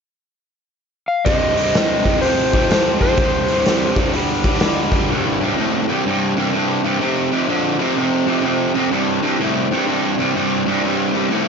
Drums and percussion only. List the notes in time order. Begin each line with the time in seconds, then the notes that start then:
1.26 kick, open hi-hat
1.57 open hi-hat
1.74 snare, open hi-hat
2.05 kick, open hi-hat
2.23 open hi-hat
2.53 kick, open hi-hat
2.71 snare, open hi-hat
3.01 kick, open hi-hat
3.17 kick, open hi-hat
3.48 open hi-hat
3.66 snare, open hi-hat
3.96 kick, open hi-hat
4.13 open hi-hat
4.44 kick, open hi-hat
4.54 snare
4.60 snare, open hi-hat
4.91 kick, open hi-hat